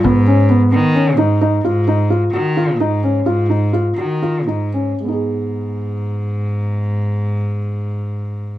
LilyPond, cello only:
\new Staff \with { instrumentName = "Cello" } { \clef bass \time 7/8 \key gis \dorian \tempo 4 = 123 gis,4. dis4 gis,4 | gis,4. dis4 gis,4 | gis,4. dis4 gis,4 | gis,2.~ gis,8~ |
gis,2.~ gis,8 | }